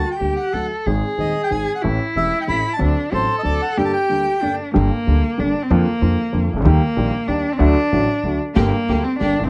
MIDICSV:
0, 0, Header, 1, 6, 480
1, 0, Start_track
1, 0, Key_signature, -2, "minor"
1, 0, Tempo, 324851
1, 1262, Time_signature, 3, 2, 24, 8
1, 7016, Tempo, 318471
1, 14173, End_track
2, 0, Start_track
2, 0, Title_t, "Bandoneon"
2, 0, Program_c, 0, 23
2, 165, Note_on_c, 0, 79, 51
2, 507, Note_off_c, 0, 79, 0
2, 534, Note_on_c, 0, 78, 54
2, 985, Note_off_c, 0, 78, 0
2, 1772, Note_on_c, 0, 75, 51
2, 2095, Note_off_c, 0, 75, 0
2, 2119, Note_on_c, 0, 79, 52
2, 2224, Note_off_c, 0, 79, 0
2, 2238, Note_on_c, 0, 80, 59
2, 2564, Note_off_c, 0, 80, 0
2, 2591, Note_on_c, 0, 78, 54
2, 2696, Note_off_c, 0, 78, 0
2, 3207, Note_on_c, 0, 76, 57
2, 3526, Note_off_c, 0, 76, 0
2, 3560, Note_on_c, 0, 79, 56
2, 3608, Note_off_c, 0, 79, 0
2, 3673, Note_on_c, 0, 83, 75
2, 4032, Note_off_c, 0, 83, 0
2, 4035, Note_on_c, 0, 81, 62
2, 4137, Note_off_c, 0, 81, 0
2, 4646, Note_on_c, 0, 72, 62
2, 4963, Note_off_c, 0, 72, 0
2, 5004, Note_on_c, 0, 75, 59
2, 5050, Note_off_c, 0, 75, 0
2, 5099, Note_on_c, 0, 74, 65
2, 5340, Note_off_c, 0, 74, 0
2, 5348, Note_on_c, 0, 78, 66
2, 5562, Note_off_c, 0, 78, 0
2, 5586, Note_on_c, 0, 79, 66
2, 5675, Note_off_c, 0, 79, 0
2, 5692, Note_on_c, 0, 81, 55
2, 5788, Note_off_c, 0, 81, 0
2, 5807, Note_on_c, 0, 79, 68
2, 6732, Note_off_c, 0, 79, 0
2, 14173, End_track
3, 0, Start_track
3, 0, Title_t, "Cello"
3, 0, Program_c, 1, 42
3, 0, Note_on_c, 1, 66, 68
3, 266, Note_off_c, 1, 66, 0
3, 303, Note_on_c, 1, 67, 62
3, 782, Note_on_c, 1, 69, 60
3, 805, Note_off_c, 1, 67, 0
3, 1269, Note_on_c, 1, 68, 67
3, 1291, Note_off_c, 1, 69, 0
3, 2692, Note_on_c, 1, 64, 73
3, 2714, Note_off_c, 1, 68, 0
3, 4127, Note_off_c, 1, 64, 0
3, 4139, Note_on_c, 1, 62, 73
3, 4625, Note_on_c, 1, 69, 73
3, 4647, Note_off_c, 1, 62, 0
3, 5580, Note_on_c, 1, 67, 76
3, 5602, Note_off_c, 1, 69, 0
3, 6545, Note_on_c, 1, 62, 61
3, 6568, Note_off_c, 1, 67, 0
3, 7009, Note_off_c, 1, 62, 0
3, 7018, Note_on_c, 1, 58, 83
3, 7997, Note_on_c, 1, 62, 72
3, 8019, Note_off_c, 1, 58, 0
3, 8342, Note_on_c, 1, 60, 69
3, 8365, Note_off_c, 1, 62, 0
3, 8472, Note_on_c, 1, 58, 86
3, 8494, Note_off_c, 1, 60, 0
3, 9659, Note_off_c, 1, 58, 0
3, 9885, Note_on_c, 1, 58, 93
3, 10832, Note_on_c, 1, 62, 80
3, 10854, Note_off_c, 1, 58, 0
3, 11203, Note_on_c, 1, 60, 85
3, 11225, Note_off_c, 1, 62, 0
3, 11317, Note_off_c, 1, 60, 0
3, 11326, Note_on_c, 1, 62, 99
3, 12472, Note_off_c, 1, 62, 0
3, 12758, Note_on_c, 1, 58, 88
3, 13481, Note_on_c, 1, 60, 83
3, 13503, Note_off_c, 1, 58, 0
3, 13713, Note_off_c, 1, 60, 0
3, 13722, Note_on_c, 1, 62, 88
3, 14087, Note_on_c, 1, 60, 90
3, 14110, Note_off_c, 1, 62, 0
3, 14173, Note_off_c, 1, 60, 0
3, 14173, End_track
4, 0, Start_track
4, 0, Title_t, "String section"
4, 0, Program_c, 2, 48
4, 12746, Note_on_c, 2, 58, 77
4, 12753, Note_on_c, 2, 67, 78
4, 12757, Note_on_c, 2, 62, 65
4, 12963, Note_off_c, 2, 58, 0
4, 12967, Note_off_c, 2, 67, 0
4, 12969, Note_off_c, 2, 62, 0
4, 13249, Note_on_c, 2, 58, 46
4, 13249, Note_on_c, 2, 62, 42
4, 13257, Note_on_c, 2, 67, 51
4, 13455, Note_off_c, 2, 58, 0
4, 13455, Note_off_c, 2, 62, 0
4, 13459, Note_off_c, 2, 67, 0
4, 13731, Note_on_c, 2, 58, 49
4, 13731, Note_on_c, 2, 62, 48
4, 13734, Note_on_c, 2, 67, 58
4, 13935, Note_off_c, 2, 58, 0
4, 13935, Note_off_c, 2, 62, 0
4, 13937, Note_off_c, 2, 67, 0
4, 14173, End_track
5, 0, Start_track
5, 0, Title_t, "Grand piano"
5, 0, Program_c, 3, 0
5, 306, Note_on_c, 3, 50, 33
5, 311, Note_on_c, 3, 38, 33
5, 313, Note_on_c, 3, 55, 30
5, 314, Note_on_c, 3, 67, 37
5, 315, Note_on_c, 3, 58, 28
5, 506, Note_off_c, 3, 38, 0
5, 507, Note_off_c, 3, 55, 0
5, 508, Note_off_c, 3, 58, 0
5, 508, Note_off_c, 3, 67, 0
5, 510, Note_off_c, 3, 50, 0
5, 800, Note_on_c, 3, 50, 33
5, 808, Note_on_c, 3, 38, 32
5, 808, Note_on_c, 3, 57, 24
5, 809, Note_on_c, 3, 54, 26
5, 811, Note_on_c, 3, 66, 29
5, 994, Note_off_c, 3, 50, 0
5, 996, Note_off_c, 3, 57, 0
5, 997, Note_off_c, 3, 38, 0
5, 997, Note_off_c, 3, 54, 0
5, 998, Note_off_c, 3, 66, 0
5, 1282, Note_on_c, 3, 51, 44
5, 1286, Note_on_c, 3, 68, 50
5, 1287, Note_on_c, 3, 56, 46
5, 1290, Note_on_c, 3, 32, 60
5, 1291, Note_on_c, 3, 44, 55
5, 1291, Note_on_c, 3, 60, 42
5, 1475, Note_off_c, 3, 51, 0
5, 1477, Note_off_c, 3, 56, 0
5, 1477, Note_off_c, 3, 68, 0
5, 1479, Note_off_c, 3, 32, 0
5, 1479, Note_off_c, 3, 44, 0
5, 1479, Note_off_c, 3, 60, 0
5, 1745, Note_on_c, 3, 60, 29
5, 1746, Note_on_c, 3, 51, 31
5, 1746, Note_on_c, 3, 56, 29
5, 1749, Note_on_c, 3, 27, 37
5, 1751, Note_on_c, 3, 39, 38
5, 1754, Note_on_c, 3, 68, 38
5, 1947, Note_off_c, 3, 51, 0
5, 1947, Note_off_c, 3, 60, 0
5, 1948, Note_off_c, 3, 56, 0
5, 1949, Note_off_c, 3, 27, 0
5, 1950, Note_off_c, 3, 39, 0
5, 1951, Note_off_c, 3, 68, 0
5, 2223, Note_on_c, 3, 32, 34
5, 2224, Note_on_c, 3, 51, 29
5, 2225, Note_on_c, 3, 44, 31
5, 2225, Note_on_c, 3, 56, 28
5, 2232, Note_on_c, 3, 60, 26
5, 2232, Note_on_c, 3, 68, 30
5, 2424, Note_off_c, 3, 32, 0
5, 2425, Note_off_c, 3, 44, 0
5, 2425, Note_off_c, 3, 51, 0
5, 2425, Note_off_c, 3, 56, 0
5, 2429, Note_off_c, 3, 60, 0
5, 2429, Note_off_c, 3, 68, 0
5, 2710, Note_on_c, 3, 52, 46
5, 2712, Note_on_c, 3, 57, 44
5, 2712, Note_on_c, 3, 61, 48
5, 2717, Note_on_c, 3, 45, 57
5, 2720, Note_on_c, 3, 67, 55
5, 2721, Note_on_c, 3, 33, 62
5, 2905, Note_off_c, 3, 52, 0
5, 2906, Note_off_c, 3, 57, 0
5, 2906, Note_off_c, 3, 61, 0
5, 2909, Note_off_c, 3, 45, 0
5, 2910, Note_off_c, 3, 67, 0
5, 2911, Note_off_c, 3, 33, 0
5, 3190, Note_on_c, 3, 52, 35
5, 3191, Note_on_c, 3, 57, 31
5, 3194, Note_on_c, 3, 28, 39
5, 3194, Note_on_c, 3, 61, 31
5, 3195, Note_on_c, 3, 40, 40
5, 3196, Note_on_c, 3, 67, 39
5, 3384, Note_off_c, 3, 52, 0
5, 3384, Note_off_c, 3, 57, 0
5, 3386, Note_off_c, 3, 28, 0
5, 3386, Note_off_c, 3, 40, 0
5, 3386, Note_off_c, 3, 61, 0
5, 3387, Note_off_c, 3, 67, 0
5, 3651, Note_on_c, 3, 45, 35
5, 3652, Note_on_c, 3, 52, 28
5, 3658, Note_on_c, 3, 61, 27
5, 3658, Note_on_c, 3, 67, 36
5, 3659, Note_on_c, 3, 33, 33
5, 3660, Note_on_c, 3, 57, 28
5, 3853, Note_off_c, 3, 45, 0
5, 3853, Note_off_c, 3, 52, 0
5, 3856, Note_off_c, 3, 67, 0
5, 3857, Note_off_c, 3, 33, 0
5, 3857, Note_off_c, 3, 57, 0
5, 3857, Note_off_c, 3, 61, 0
5, 4121, Note_on_c, 3, 54, 53
5, 4129, Note_on_c, 3, 60, 51
5, 4130, Note_on_c, 3, 38, 62
5, 4130, Note_on_c, 3, 62, 50
5, 4136, Note_on_c, 3, 50, 65
5, 4136, Note_on_c, 3, 69, 57
5, 4327, Note_off_c, 3, 54, 0
5, 4331, Note_off_c, 3, 38, 0
5, 4331, Note_off_c, 3, 60, 0
5, 4331, Note_off_c, 3, 62, 0
5, 4334, Note_off_c, 3, 69, 0
5, 4335, Note_off_c, 3, 50, 0
5, 4609, Note_on_c, 3, 60, 35
5, 4612, Note_on_c, 3, 54, 38
5, 4615, Note_on_c, 3, 45, 44
5, 4618, Note_on_c, 3, 69, 39
5, 4619, Note_on_c, 3, 33, 40
5, 4625, Note_on_c, 3, 62, 34
5, 4811, Note_off_c, 3, 60, 0
5, 4812, Note_off_c, 3, 54, 0
5, 4813, Note_off_c, 3, 45, 0
5, 4815, Note_off_c, 3, 69, 0
5, 4816, Note_off_c, 3, 33, 0
5, 4819, Note_off_c, 3, 62, 0
5, 5066, Note_on_c, 3, 38, 37
5, 5069, Note_on_c, 3, 54, 33
5, 5074, Note_on_c, 3, 69, 36
5, 5076, Note_on_c, 3, 60, 29
5, 5077, Note_on_c, 3, 50, 37
5, 5081, Note_on_c, 3, 62, 28
5, 5278, Note_off_c, 3, 38, 0
5, 5279, Note_off_c, 3, 54, 0
5, 5282, Note_off_c, 3, 69, 0
5, 5283, Note_off_c, 3, 50, 0
5, 5283, Note_off_c, 3, 60, 0
5, 5286, Note_off_c, 3, 62, 0
5, 5572, Note_on_c, 3, 31, 61
5, 5574, Note_on_c, 3, 62, 55
5, 5576, Note_on_c, 3, 58, 54
5, 5577, Note_on_c, 3, 43, 65
5, 5579, Note_on_c, 3, 55, 54
5, 5583, Note_on_c, 3, 69, 61
5, 5772, Note_off_c, 3, 31, 0
5, 5773, Note_off_c, 3, 62, 0
5, 5774, Note_off_c, 3, 58, 0
5, 5775, Note_off_c, 3, 43, 0
5, 5776, Note_off_c, 3, 55, 0
5, 5777, Note_off_c, 3, 69, 0
5, 6048, Note_on_c, 3, 55, 38
5, 6054, Note_on_c, 3, 50, 40
5, 6055, Note_on_c, 3, 62, 34
5, 6056, Note_on_c, 3, 58, 32
5, 6056, Note_on_c, 3, 69, 37
5, 6060, Note_on_c, 3, 38, 42
5, 6253, Note_off_c, 3, 55, 0
5, 6256, Note_off_c, 3, 50, 0
5, 6256, Note_off_c, 3, 58, 0
5, 6256, Note_off_c, 3, 62, 0
5, 6257, Note_off_c, 3, 69, 0
5, 6259, Note_off_c, 3, 38, 0
5, 6531, Note_on_c, 3, 58, 30
5, 6532, Note_on_c, 3, 55, 33
5, 6538, Note_on_c, 3, 43, 40
5, 6539, Note_on_c, 3, 62, 29
5, 6541, Note_on_c, 3, 31, 40
5, 6542, Note_on_c, 3, 69, 35
5, 6736, Note_off_c, 3, 58, 0
5, 6737, Note_off_c, 3, 55, 0
5, 6740, Note_off_c, 3, 43, 0
5, 6740, Note_off_c, 3, 62, 0
5, 6741, Note_off_c, 3, 31, 0
5, 6742, Note_off_c, 3, 69, 0
5, 6996, Note_on_c, 3, 50, 66
5, 7001, Note_on_c, 3, 43, 74
5, 7001, Note_on_c, 3, 55, 56
5, 7001, Note_on_c, 3, 67, 72
5, 7005, Note_on_c, 3, 31, 78
5, 7008, Note_on_c, 3, 58, 59
5, 7209, Note_off_c, 3, 50, 0
5, 7211, Note_off_c, 3, 43, 0
5, 7211, Note_off_c, 3, 55, 0
5, 7211, Note_off_c, 3, 67, 0
5, 7214, Note_off_c, 3, 31, 0
5, 7215, Note_off_c, 3, 58, 0
5, 7502, Note_on_c, 3, 55, 39
5, 7505, Note_on_c, 3, 50, 50
5, 7510, Note_on_c, 3, 38, 46
5, 7510, Note_on_c, 3, 58, 36
5, 7515, Note_on_c, 3, 67, 46
5, 7703, Note_off_c, 3, 55, 0
5, 7707, Note_off_c, 3, 38, 0
5, 7707, Note_off_c, 3, 50, 0
5, 7707, Note_off_c, 3, 58, 0
5, 7710, Note_off_c, 3, 67, 0
5, 7959, Note_on_c, 3, 50, 40
5, 7964, Note_on_c, 3, 31, 51
5, 7968, Note_on_c, 3, 55, 36
5, 7970, Note_on_c, 3, 43, 45
5, 7973, Note_on_c, 3, 67, 39
5, 7975, Note_on_c, 3, 58, 37
5, 8171, Note_off_c, 3, 50, 0
5, 8174, Note_off_c, 3, 31, 0
5, 8176, Note_off_c, 3, 43, 0
5, 8176, Note_off_c, 3, 55, 0
5, 8178, Note_off_c, 3, 67, 0
5, 8179, Note_off_c, 3, 58, 0
5, 8457, Note_on_c, 3, 50, 64
5, 8460, Note_on_c, 3, 53, 80
5, 8465, Note_on_c, 3, 65, 76
5, 8466, Note_on_c, 3, 41, 82
5, 8468, Note_on_c, 3, 58, 64
5, 8658, Note_off_c, 3, 50, 0
5, 8662, Note_off_c, 3, 65, 0
5, 8663, Note_off_c, 3, 41, 0
5, 8663, Note_off_c, 3, 53, 0
5, 8664, Note_off_c, 3, 58, 0
5, 8918, Note_on_c, 3, 50, 45
5, 8924, Note_on_c, 3, 41, 51
5, 8925, Note_on_c, 3, 53, 52
5, 8928, Note_on_c, 3, 65, 53
5, 8929, Note_on_c, 3, 58, 43
5, 9127, Note_off_c, 3, 50, 0
5, 9130, Note_off_c, 3, 41, 0
5, 9131, Note_off_c, 3, 53, 0
5, 9132, Note_off_c, 3, 58, 0
5, 9132, Note_off_c, 3, 65, 0
5, 9392, Note_on_c, 3, 50, 43
5, 9396, Note_on_c, 3, 53, 47
5, 9397, Note_on_c, 3, 41, 52
5, 9404, Note_on_c, 3, 58, 35
5, 9405, Note_on_c, 3, 65, 42
5, 9604, Note_off_c, 3, 50, 0
5, 9606, Note_off_c, 3, 41, 0
5, 9607, Note_off_c, 3, 53, 0
5, 9610, Note_off_c, 3, 58, 0
5, 9610, Note_off_c, 3, 65, 0
5, 9695, Note_on_c, 3, 36, 51
5, 9752, Note_on_c, 3, 37, 66
5, 9763, Note_off_c, 3, 36, 0
5, 9817, Note_on_c, 3, 38, 79
5, 9821, Note_off_c, 3, 37, 0
5, 9875, Note_on_c, 3, 51, 81
5, 9881, Note_on_c, 3, 39, 86
5, 9882, Note_on_c, 3, 55, 61
5, 9883, Note_off_c, 3, 38, 0
5, 9884, Note_on_c, 3, 58, 66
5, 9890, Note_on_c, 3, 67, 86
5, 10085, Note_off_c, 3, 39, 0
5, 10086, Note_off_c, 3, 55, 0
5, 10087, Note_off_c, 3, 51, 0
5, 10087, Note_off_c, 3, 58, 0
5, 10090, Note_off_c, 3, 67, 0
5, 10359, Note_on_c, 3, 58, 43
5, 10360, Note_on_c, 3, 34, 60
5, 10360, Note_on_c, 3, 51, 51
5, 10361, Note_on_c, 3, 55, 44
5, 10363, Note_on_c, 3, 46, 58
5, 10368, Note_on_c, 3, 67, 53
5, 10564, Note_off_c, 3, 58, 0
5, 10565, Note_off_c, 3, 34, 0
5, 10565, Note_off_c, 3, 51, 0
5, 10565, Note_off_c, 3, 55, 0
5, 10566, Note_off_c, 3, 46, 0
5, 10568, Note_off_c, 3, 67, 0
5, 10836, Note_on_c, 3, 51, 52
5, 10840, Note_on_c, 3, 55, 40
5, 10844, Note_on_c, 3, 39, 46
5, 10845, Note_on_c, 3, 67, 48
5, 10849, Note_on_c, 3, 58, 43
5, 11044, Note_off_c, 3, 55, 0
5, 11046, Note_off_c, 3, 39, 0
5, 11047, Note_off_c, 3, 51, 0
5, 11047, Note_off_c, 3, 67, 0
5, 11048, Note_off_c, 3, 58, 0
5, 11294, Note_on_c, 3, 50, 77
5, 11301, Note_on_c, 3, 38, 82
5, 11303, Note_on_c, 3, 54, 68
5, 11304, Note_on_c, 3, 57, 68
5, 11309, Note_on_c, 3, 66, 81
5, 11515, Note_off_c, 3, 38, 0
5, 11516, Note_off_c, 3, 54, 0
5, 11516, Note_off_c, 3, 57, 0
5, 11517, Note_off_c, 3, 50, 0
5, 11518, Note_off_c, 3, 66, 0
5, 11801, Note_on_c, 3, 33, 51
5, 11803, Note_on_c, 3, 45, 52
5, 11803, Note_on_c, 3, 50, 43
5, 11803, Note_on_c, 3, 57, 40
5, 11806, Note_on_c, 3, 66, 45
5, 11808, Note_on_c, 3, 54, 39
5, 12006, Note_off_c, 3, 33, 0
5, 12007, Note_off_c, 3, 45, 0
5, 12007, Note_off_c, 3, 50, 0
5, 12007, Note_off_c, 3, 57, 0
5, 12008, Note_off_c, 3, 66, 0
5, 12009, Note_off_c, 3, 54, 0
5, 12284, Note_on_c, 3, 50, 45
5, 12289, Note_on_c, 3, 38, 44
5, 12289, Note_on_c, 3, 54, 33
5, 12292, Note_on_c, 3, 57, 36
5, 12304, Note_on_c, 3, 66, 43
5, 12493, Note_off_c, 3, 38, 0
5, 12493, Note_off_c, 3, 54, 0
5, 12494, Note_off_c, 3, 57, 0
5, 12497, Note_off_c, 3, 50, 0
5, 12500, Note_off_c, 3, 66, 0
5, 12758, Note_on_c, 3, 50, 71
5, 12763, Note_on_c, 3, 55, 66
5, 12766, Note_on_c, 3, 43, 80
5, 12766, Note_on_c, 3, 58, 65
5, 12766, Note_on_c, 3, 67, 80
5, 12769, Note_on_c, 3, 31, 81
5, 12970, Note_off_c, 3, 50, 0
5, 12972, Note_off_c, 3, 55, 0
5, 12973, Note_off_c, 3, 43, 0
5, 12973, Note_off_c, 3, 67, 0
5, 12974, Note_off_c, 3, 58, 0
5, 12975, Note_off_c, 3, 31, 0
5, 13258, Note_on_c, 3, 50, 54
5, 13264, Note_on_c, 3, 55, 40
5, 13267, Note_on_c, 3, 38, 56
5, 13268, Note_on_c, 3, 67, 55
5, 13271, Note_on_c, 3, 58, 41
5, 13463, Note_off_c, 3, 50, 0
5, 13463, Note_off_c, 3, 55, 0
5, 13464, Note_off_c, 3, 38, 0
5, 13465, Note_off_c, 3, 67, 0
5, 13466, Note_off_c, 3, 58, 0
5, 13721, Note_on_c, 3, 50, 43
5, 13724, Note_on_c, 3, 55, 35
5, 13729, Note_on_c, 3, 31, 50
5, 13731, Note_on_c, 3, 43, 50
5, 13731, Note_on_c, 3, 58, 37
5, 13735, Note_on_c, 3, 67, 45
5, 13930, Note_off_c, 3, 50, 0
5, 13932, Note_off_c, 3, 55, 0
5, 13934, Note_off_c, 3, 31, 0
5, 13935, Note_off_c, 3, 43, 0
5, 13935, Note_off_c, 3, 58, 0
5, 13937, Note_off_c, 3, 67, 0
5, 14022, Note_on_c, 3, 33, 50
5, 14089, Note_off_c, 3, 33, 0
5, 14089, Note_on_c, 3, 34, 63
5, 14153, Note_off_c, 3, 34, 0
5, 14173, End_track
6, 0, Start_track
6, 0, Title_t, "Upright bass"
6, 0, Program_c, 4, 32
6, 305, Note_on_c, 4, 38, 42
6, 503, Note_off_c, 4, 38, 0
6, 788, Note_on_c, 4, 38, 41
6, 986, Note_off_c, 4, 38, 0
6, 1276, Note_on_c, 4, 32, 61
6, 1472, Note_off_c, 4, 32, 0
6, 1744, Note_on_c, 4, 39, 37
6, 1946, Note_off_c, 4, 39, 0
6, 2232, Note_on_c, 4, 32, 38
6, 2429, Note_off_c, 4, 32, 0
6, 2722, Note_on_c, 4, 33, 66
6, 2911, Note_off_c, 4, 33, 0
6, 3186, Note_on_c, 4, 28, 41
6, 3382, Note_off_c, 4, 28, 0
6, 3670, Note_on_c, 4, 33, 43
6, 3863, Note_off_c, 4, 33, 0
6, 4145, Note_on_c, 4, 38, 71
6, 4339, Note_off_c, 4, 38, 0
6, 4623, Note_on_c, 4, 33, 46
6, 4817, Note_off_c, 4, 33, 0
6, 5093, Note_on_c, 4, 38, 46
6, 5291, Note_off_c, 4, 38, 0
6, 7031, Note_on_c, 4, 31, 89
6, 7227, Note_off_c, 4, 31, 0
6, 7505, Note_on_c, 4, 38, 53
6, 7705, Note_off_c, 4, 38, 0
6, 7988, Note_on_c, 4, 31, 55
6, 8186, Note_off_c, 4, 31, 0
6, 8456, Note_on_c, 4, 41, 86
6, 8658, Note_off_c, 4, 41, 0
6, 8931, Note_on_c, 4, 41, 54
6, 9133, Note_off_c, 4, 41, 0
6, 9415, Note_on_c, 4, 41, 60
6, 9615, Note_off_c, 4, 41, 0
6, 9706, Note_on_c, 4, 36, 52
6, 9765, Note_off_c, 4, 36, 0
6, 9774, Note_on_c, 4, 37, 60
6, 9825, Note_off_c, 4, 37, 0
6, 9834, Note_on_c, 4, 38, 68
6, 9877, Note_off_c, 4, 38, 0
6, 9886, Note_on_c, 4, 39, 93
6, 10087, Note_off_c, 4, 39, 0
6, 10354, Note_on_c, 4, 34, 56
6, 10561, Note_off_c, 4, 34, 0
6, 10832, Note_on_c, 4, 39, 60
6, 11040, Note_off_c, 4, 39, 0
6, 11313, Note_on_c, 4, 38, 86
6, 11520, Note_off_c, 4, 38, 0
6, 11796, Note_on_c, 4, 33, 50
6, 12003, Note_off_c, 4, 33, 0
6, 12271, Note_on_c, 4, 38, 52
6, 12484, Note_off_c, 4, 38, 0
6, 12769, Note_on_c, 4, 31, 93
6, 12975, Note_off_c, 4, 31, 0
6, 13254, Note_on_c, 4, 38, 54
6, 13458, Note_off_c, 4, 38, 0
6, 13740, Note_on_c, 4, 31, 55
6, 13940, Note_off_c, 4, 31, 0
6, 14032, Note_on_c, 4, 33, 48
6, 14094, Note_off_c, 4, 33, 0
6, 14108, Note_on_c, 4, 34, 54
6, 14153, Note_off_c, 4, 34, 0
6, 14173, End_track
0, 0, End_of_file